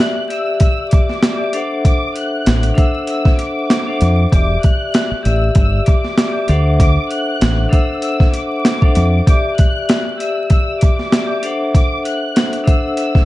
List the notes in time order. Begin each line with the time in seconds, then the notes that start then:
Already playing: G4 D5 E5 F#6
0.00 snare
0.28 G4 D5 E5 E6, closed hi-hat
0.60 E6, kick, closed hi-hat
0.91 D6, kick, closed hi-hat
1.09 snare
1.23 snare, closed hi-hat
1.37 G4 D5 E5
1.53 D4 A4 C5 E5 F#5, closed hi-hat
1.85 D6, kick, closed hi-hat
2.16 F#6, closed hi-hat
2.46 A1, snare, closed hi-hat
2.63 closed hi-hat
2.75 D4 A4 C5 E5 F#5 E6, kick, closed hi-hat
3.07 E6, closed hi-hat
3.25 kick, snare
3.39 D6, closed hi-hat
3.70 snare, closed hi-hat
3.87 D4 A4 C5 E5 F#5
4.01 F2, closed hi-hat
4.31 E1 G4 D5 E5 D6, kick, closed hi-hat
4.63 F#6, kick, closed hi-hat
4.94 snare, closed hi-hat
5.11 muted fingered electric bass stroke
5.23 A1 G4 D5 E5 E6, closed hi-hat
5.55 G1, kick, closed hi-hat
5.59 E6
5.86 D6, kick, closed hi-hat
6.04 snare
6.18 snare, closed hi-hat
6.32 G4 D5 E5
6.48 D2 D4 A4 C5 E5 F#5, closed hi-hat
6.79 D6, kick, closed hi-hat
7.11 F#6, closed hi-hat
7.41 A1, snare, closed hi-hat
7.69 D4 A4 C5 E5 F#5 E6, kick, closed hi-hat
8.02 E6, closed hi-hat
8.20 kick, snare
8.34 D6, closed hi-hat
8.65 snare, closed hi-hat
8.82 D4 A4 C5 E5 F#5, kick
8.95 F2, closed hi-hat
9.26 G4 D5 E5 D6, kick, closed hi-hat
9.58 F#6, kick, closed hi-hat
9.89 snare, closed hi-hat
10.18 G4 D5 E5 E6, closed hi-hat
10.50 E6, kick, closed hi-hat
10.81 D6, kick, closed hi-hat
10.99 snare
11.12 snare, closed hi-hat
11.27 G4 D5 E5
11.43 D4 A4 C5 E5 F#5, closed hi-hat
11.75 D6, kick, closed hi-hat
12.05 F#6, closed hi-hat
12.36 snare, closed hi-hat
12.53 closed hi-hat
12.64 D4 A4 C5 E5 F#5 E6, kick, closed hi-hat
12.97 E6, closed hi-hat
13.15 kick, snare